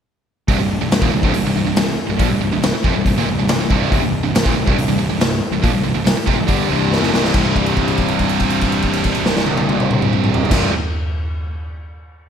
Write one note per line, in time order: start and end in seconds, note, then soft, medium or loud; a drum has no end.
0.48 0.58 C1 medium
0.48 0.58 C2 medium
0.48 0.58 G2 medium
0.48 kick loud
0.48 open hi-hat medium
0.58 0.79 C1 medium
0.58 0.76 C2 medium
0.58 0.76 G2 medium
0.80 0.90 C1 medium
0.80 0.91 C2 medium
0.80 0.91 G2 medium
0.91 1.01 C1 medium
0.91 1.01 C2 medium
0.91 1.02 G2 medium
0.91 snare loud
0.91 open hi-hat medium
1.01 1.11 D#1 medium
1.01 1.12 D#2 medium
1.01 1.12 A#2 loud
1.01 kick loud
1.12 1.22 C1 medium
1.12 1.22 C2 medium
1.12 1.24 G2 medium
1.23 1.33 C1 medium
1.23 1.34 C2 medium
1.23 1.34 G2 medium
1.23 kick loud
1.34 1.44 C1 medium
1.34 1.44 C2 medium
1.34 1.44 G2 medium
1.34 open hi-hat medium
1.45 1.55 C1 medium
1.45 1.55 C2 medium
1.45 1.56 G2 medium
1.56 1.66 C1 medium
1.56 1.67 C2 medium
1.56 1.66 G2 medium
1.64 1.76 C1 medium
1.64 1.73 C2 medium
1.64 1.77 G2 medium
1.68 1.76 C2 medium
1.76 1.97 C1 medium
1.76 1.95 C2 medium
1.76 1.95 G2 medium
1.76 snare loud
1.76 open hi-hat medium
2.09 2.19 C1 medium
2.09 2.19 C2 medium
2.09 2.20 G2 medium
2.19 2.30 A#1 medium
2.19 2.30 A#2 medium
2.19 2.30 F3 loud
2.19 kick loud
2.19 open hi-hat medium
2.30 2.40 C1 medium
2.30 2.42 C2 medium
2.30 2.42 G2 medium
2.40 2.52 C1 medium
2.40 2.52 C2 medium
2.40 2.51 G2 medium
2.44 2.53 G2 medium
2.53 2.62 C1 medium
2.53 2.63 C2 medium
2.53 2.64 G2 medium
2.63 2.73 C1 medium
2.63 2.74 C2 medium
2.63 2.75 G2 medium
2.63 snare loud
2.63 open hi-hat medium
2.74 muted distorted electric guitar stroke medium
2.74 muted picked electric bass stroke soft
2.74 muted overdriven electric guitar stroke medium
2.84 2.94 F1 medium
2.84 2.95 F2 medium
2.84 2.95 C3 loud
2.84 kick loud
2.96 3.05 C1 medium
2.96 3.05 C2 medium
2.96 3.05 G2 medium
3.06 3.16 C1 medium
3.06 3.17 C2 medium
3.06 3.17 G2 medium
3.06 kick medium
3.06 open hi-hat soft
3.16 3.26 D#1 loud
3.16 3.27 D#2 medium
3.16 3.27 A#2 loud
3.27 3.37 C1 medium
3.27 3.37 C2 medium
3.27 3.37 G2 medium
3.38 3.47 C1 medium
3.38 3.46 C2 medium
3.38 3.46 G2 medium
3.47 3.58 C1 medium
3.47 3.58 C2 medium
3.47 3.58 G2 medium
3.47 snare loud
3.47 open hi-hat medium
3.59 3.69 C1 medium
3.59 3.68 C2 medium
3.59 3.68 G2 medium
3.69 3.90 C1 medium
3.69 3.90 C2 medium
3.69 3.91 G2 loud
3.69 3.91 C3 loud
3.69 kick medium
3.91 4.02 C1 loud
3.91 4.02 C2 medium
3.91 4.03 G2 medium
3.91 kick medium
3.91 open hi-hat medium
4.02 4.22 C1 medium
4.02 4.20 C2 medium
4.02 4.20 G2 medium
4.23 4.33 C1 medium
4.23 4.34 C2 medium
4.23 4.34 G2 medium
4.34 4.44 C1 medium
4.34 4.44 C2 medium
4.34 4.45 G2 medium
4.34 snare loud
4.34 open hi-hat medium
4.45 4.54 D#1 medium
4.45 4.55 D#2 medium
4.45 4.55 A#2 loud
4.45 kick loud
4.54 4.65 C1 medium
4.54 4.64 C2 medium
4.54 4.65 G2 medium
4.65 4.75 C1 medium
4.65 4.76 C2 medium
4.65 4.76 G2 medium
4.65 kick loud
4.76 4.87 C1 medium
4.76 4.88 C2 medium
4.76 4.88 G2 medium
4.76 open hi-hat medium
4.87 4.97 C1 medium
4.87 4.98 C2 medium
4.87 4.99 G2 medium
4.98 5.08 C1 medium
4.98 5.08 C2 medium
4.98 5.09 G2 medium
5.09 5.19 C1 medium
5.09 5.19 C2 medium
5.09 5.19 G2 medium
5.20 5.40 C1 medium
5.20 5.37 C2 medium
5.20 5.38 G2 medium
5.20 snare loud
5.20 open hi-hat medium
5.51 5.62 C1 medium
5.51 5.60 C2 medium
5.51 5.61 G2 medium
5.60 5.73 A#1 medium
5.60 5.71 A#2 medium
5.60 5.72 F3 loud
5.60 kick loud
5.60 open hi-hat medium
5.71 5.83 C1 medium
5.71 5.82 C2 medium
5.71 5.82 G2 medium
5.83 5.94 C1 medium
5.83 5.94 C2 medium
5.83 5.93 G2 medium
5.94 6.05 C1 medium
5.94 6.04 C2 medium
5.94 6.04 G2 medium
6.05 6.15 C1 medium
6.05 6.14 C2 medium
6.05 6.17 G2 medium
6.05 snare loud
6.05 open hi-hat medium
6.16 muted overdriven electric guitar stroke medium
6.16 muted picked electric bass stroke soft
6.16 muted distorted electric guitar stroke medium
6.27 6.37 F1 medium
6.27 6.37 F2 medium
6.27 6.38 C3 medium
6.27 kick medium
6.37 6.48 C1 medium
6.37 6.47 C2 medium
6.37 6.46 G2 medium
6.47 6.69 G1 medium
6.47 6.68 G2 medium
6.47 6.69 D3 medium
6.47 6.70 G3 medium
6.47 kick loud
6.47 open hi-hat medium
6.69 7.01 C1 medium
6.69 7.01 C2 loud
6.69 7.02 G2 loud
6.69 7.02 C3 loud
6.93 snare medium
7.02 7.13 F#1 medium
7.02 7.12 F#2 medium
7.02 7.13 C#3 medium
7.02 snare medium
7.12 7.33 C1 medium
7.12 7.33 C2 medium
7.12 7.34 G2 loud
7.12 7.35 C3 loud
7.12 snare medium
7.24 snare medium
7.34 10.42 C1 medium
7.34 10.48 C2 medium
7.34 10.51 G2 medium
7.34 10.53 C3 loud
7.34 kick loud
7.34 crash medium
7.56 kick medium
7.56 crash soft
7.66 crash soft
7.77 kick medium
7.77 crash soft
7.88 crash soft
7.98 kick medium
7.98 crash soft
8.08 crash soft
8.19 kick medium
8.19 crash soft
8.29 crash medium
8.40 kick medium
8.40 crash soft
8.50 crash medium
8.61 kick medium
8.61 crash medium
8.72 crash soft
8.82 kick medium
8.82 crash soft
8.93 crash soft
9.04 kick medium
9.04 crash medium
9.15 crash medium
9.26 snare medium
9.37 snare medium
9.46 high tom medium
9.57 high tom medium
9.69 high tom medium
9.80 mid tom medium
9.91 mid tom medium
10.02 mid tom loud
10.13 mid tom loud
10.24 mid tom loud
10.34 floor tom loud
10.45 10.69 C2 medium
10.45 floor tom medium
10.51 10.69 C1 medium
10.51 10.71 G2 medium
10.51 10.72 C3 medium
10.51 kick loud
10.51 snare medium
10.51 crash loud